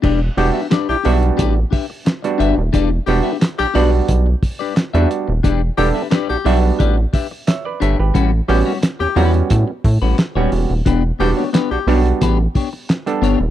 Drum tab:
CC |x---------------|----------------|----------------|----------------|
HH |--o-x-oxx-o-xxx-|x-o-x-o-x-o-xxx-|x-o-x-o-x-o-x-x-|x-o-x-oxx-o-x-o-|
CP |----x-------x---|----x-------x---|----x-------x---|----x-------x---|
SD |----o-------o---|----o-------o---|----o-------o---|----o-------o---|
BD |o-------o-o-----|o-------o-o-----|o-------o-o-----|o-------o-o-----|

CC |----------------|
HH |x-o-x-oxx-o-xxx-|
CP |----x-------x---|
SD |----o-------o---|
BD |o-------o-o-----|